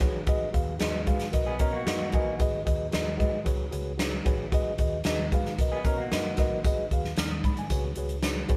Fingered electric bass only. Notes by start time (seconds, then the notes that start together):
0.01 A1
0.27 G#1
0.54 D#2
0.81 D#2
1.08 G#2
1.33 B1
1.60 B2
1.87 F#2
2.13 A1
2.39 G#1
2.67 D#2
2.94 D#2
3.20 G#2
3.46 C#2
3.73 C#2
4.26 A1
4.52 G#1
4.79 D#2
5.06 D#2
5.32 G#2
5.58 B1
5.73 muted fingered electric bass stroke
5.85 B2
6.12 F#2
6.38 A1
6.64 G#1
6.91 D#2
7.17 D#2
7.44 G#2
7.70 C#2
7.96 C#2
8.50 A1